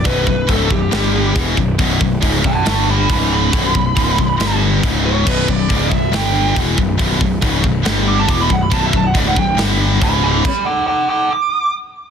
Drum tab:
CC |--------|--------|--------|x-------|
HH |o-o-o-o-|o-o-o-o-|o-o-o-o-|--o-o-o-|
SD |----o---|----o---|----o---|----o---|
BD |oooo--oo|oooo--o-|oooo--o-|oooo--oo|

CC |--------|--------|x-------|
HH |o-o-o-o-|o-o-o-o-|--------|
SD |----o---|----o---|--------|
BD |oooo--oo|oooo--o-|o-------|